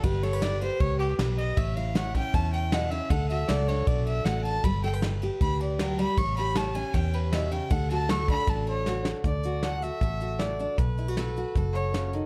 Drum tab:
RD |xxxxxxxx|xxxxxxxx|xxxxxxxx|xxxxxxxx|
HH |--------|--------|--------|--------|
SD |--o---o-|--o---o-|--o---o-|--o---o-|
BD |o---o---|o--oo---|o---o---|o---o---|

RD |xxxxxxxx|xxxxxx--|--------|--------|
HH |--------|--------|xxxxxxxx|xxxxxxxx|
SD |--o---o-|--o---oo|--o---o-|--o---o-|
BD |o---o---|o--oo---|o---o---|o---o---|